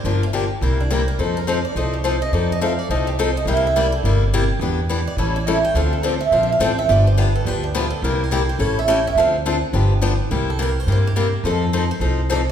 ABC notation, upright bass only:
X:1
M:4/4
L:1/8
Q:"Swing" 1/4=211
K:Cmix
V:1 name="Upright bass" clef=bass
G,,,4 C,,4 | F,,4 C,,4 | F,,4 C,,4 | C,,4 G,,,4 |
E,,4 A,,,4 | D,,4 B,,,2 A,,,2 | G,,,4 D,,4 | C,,4 A,,,4 |
D,,4 G,,,4 | C,,4 G,,4 | F,,4 C,,4 |]